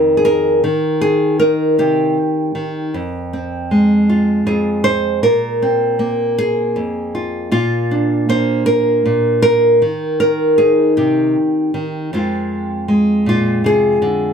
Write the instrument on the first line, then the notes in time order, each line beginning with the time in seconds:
nylon-string guitar
Already playing: F2 D#3 D#4 A#4
0.17 G#4
0.25 A#4
0.64 D#3
1.01 G#4
1.39 D#4 A#4
1.79 C3 G4
2.55 D#3
2.94 F2
3.33 C4
3.71 G#3
4.09 F4
4.46 F2 G#4
4.84 C5
5.23 A#2 A#4
5.62 C4
5.99 A#3
6.38 G#4
6.76 F2
7.15 F4
7.51 A#2 F4
7.91 D4
8.29 A#3 C5
8.66 A#4
9.05 A#2
9.42 A#4
9.82 D#3
10.20 A#4
10.58 D#4 G#4
10.97 C3 G4
11.74 D#3
12.13 F2 G#3 C4 F4
12.88 G#3
13.26 A#2 F4
13.64 C3 G#4
14.02 D3